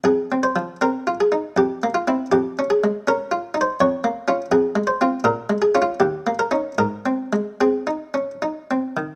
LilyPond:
\new Staff \with { instrumentName = "Harpsichord" } { \time 3/4 \key f \minor \tempo 4 = 80 << { aes'8 c''8 bes'8 aes'8 g'8 f'8 | g'8 aes'8 bes'8. c''16 des''4 | \key aes \major aes'8 c''8 bes'8 aes'16 f'16 g'8 bes'8 | bes'4 aes'4 r4 | } \\ { \tuplet 3/2 { f,8 c'8 f8 c'8 f'8 ees'8 f,8 bes8 <c' e'>8 } | \tuplet 3/2 { f,8 des'8 aes8 des'8 f'8 ees'8 f,8 bes8 <des' f'>8 } | \tuplet 3/2 { f,8 aes8 <c' f'>8 bes,8 aes8 <des' f'>8 ees,8 bes8 <des' ees'>8 } | \tuplet 3/2 { aes,8 c'8 aes8 c'8 ees'8 des'8 ees'8 c'8 ees8 } | } >> }